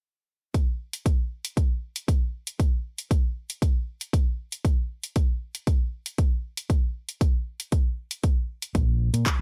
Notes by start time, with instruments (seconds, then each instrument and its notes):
0.54 kick, closed hi-hat
0.93 closed hi-hat
1.06 kick, closed hi-hat
1.45 closed hi-hat
1.57 kick, closed hi-hat
1.96 closed hi-hat
2.08 kick, closed hi-hat
2.47 closed hi-hat
2.60 kick, closed hi-hat
2.98 closed hi-hat
3.11 kick, closed hi-hat
3.50 closed hi-hat
3.62 kick, closed hi-hat
4.01 closed hi-hat
4.13 kick, closed hi-hat
4.52 closed hi-hat
4.65 kick, closed hi-hat
5.03 closed hi-hat
5.16 kick, closed hi-hat
5.55 closed hi-hat
5.67 kick, closed hi-hat
6.06 closed hi-hat
6.18 kick, closed hi-hat
6.57 closed hi-hat
6.70 kick, closed hi-hat
7.09 closed hi-hat
7.21 kick, closed hi-hat
7.60 closed hi-hat
7.72 kick, closed hi-hat
8.11 closed hi-hat
8.23 kick, closed hi-hat
8.62 closed hi-hat
8.75 fingered electric bass A#1, kick, closed hi-hat
9.14 fingered electric bass A#2, closed hi-hat
9.26 kick, clap, closed hi-hat